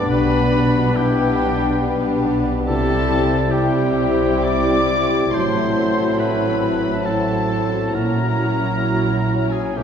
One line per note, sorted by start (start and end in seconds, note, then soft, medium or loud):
0.00 0.13 G2 medium
0.00 1.81 B3 soft
0.00 2.50 B3 medium
0.00 2.65 B3 medium
0.00 2.51 D4 medium
0.00 2.69 D4 medium
0.00 0.96 G4 soft
0.00 2.69 B4 soft
0.00 1.40 D5 medium
0.07 2.63 B1 medium
0.07 2.70 B2 medium
0.07 2.63 B2 medium
0.07 0.94 G3 medium
0.07 0.94 D4 medium
0.07 0.51 G4 medium
0.07 0.98 B4 medium
0.07 0.94 D5 medium
0.07 0.93 B5 medium
0.07 0.99 B5 medium
0.53 2.24 D4 soft
0.53 0.96 F#4 medium
0.95 1.79 G3 medium
0.95 1.39 E4 medium
0.95 1.80 G4 medium
0.95 2.24 G4 medium
0.95 1.82 G4 soft
0.95 1.80 B4 medium
0.95 2.25 G5 medium
1.38 1.79 D4 medium
1.38 2.71 D5 soft
1.80 2.63 G3 medium
1.80 2.64 D4 medium
1.80 2.65 G4 medium
1.80 3.53 G4 medium
1.80 2.65 B4 medium
2.25 2.71 D4 soft
2.65 5.30 C2 medium
2.65 5.38 C3 medium
2.65 3.47 G3 medium
2.65 5.35 G3 medium
2.65 3.47 C4 medium
2.65 3.48 E4 medium
2.65 7.90 E4 medium
2.65 3.48 G4 medium
2.65 3.52 A4 medium
2.65 3.54 A5 medium
2.65 3.48 A5 medium
2.69 5.31 C3 medium
2.69 7.78 E4 medium
3.11 5.77 C4 medium
3.51 5.29 G3 medium
3.51 5.30 C4 medium
3.51 5.31 E4 medium
3.51 4.46 G4 medium
3.51 5.30 G4 medium
3.51 4.90 G4 soft
3.51 4.46 G5 medium
3.51 4.47 G5 medium
4.00 6.61 C5 medium
4.44 5.35 D5 medium
4.44 7.04 E5 medium
4.44 5.33 D6 medium
4.44 5.34 D6 medium
4.91 5.38 G4 soft
5.32 7.90 A1 soft
5.32 7.98 A2 soft
5.32 7.91 A2 medium
5.32 7.01 F#3 medium
5.32 9.48 F#3 medium
5.32 7.78 F#3 medium
5.32 7.02 C4 medium
5.32 7.02 E4 medium
5.32 7.02 A4 medium
5.32 6.19 C5 medium
5.32 6.22 C6 medium
5.32 6.19 C6 medium
5.78 7.98 C4 soft
6.19 7.48 F#4 soft
6.19 7.07 B4 medium
6.19 7.03 B5 medium
6.62 7.98 C5 soft
7.03 7.91 F#3 medium
7.03 7.91 C4 medium
7.03 7.92 E4 soft
7.03 7.96 A4 medium
7.03 7.92 A4 medium
7.03 9.80 E5 soft
7.03 7.93 A5 medium
7.03 7.95 A5 medium
7.49 8.83 F#4 soft
7.92 9.73 A#1 soft
7.92 9.80 A#2 soft
7.92 9.73 A#2 soft
7.92 9.73 F#3 medium
7.92 9.73 F#3 soft
7.92 9.76 C#4 soft
7.92 9.45 E4 soft
7.92 9.73 E4 medium
7.92 8.85 F#4 medium
7.92 9.53 A#4 medium
7.92 9.49 A#5 medium
7.92 9.25 A#5 medium
8.39 9.80 C#4 soft
8.84 9.83 F#4 soft
8.84 9.75 F#4 soft
9.30 9.80 C#5 soft
9.52 9.78 G#4 soft
9.52 9.78 G#5 soft
9.52 9.76 G#5 medium
9.75 9.83 B1 soft
9.75 9.83 B2 soft
9.75 9.83 F#3 soft
9.75 9.83 A3 soft
9.75 9.83 B3 soft
9.75 9.83 D#4 soft
9.75 9.83 G4 soft
9.75 9.83 A4 soft
9.75 9.83 G5 soft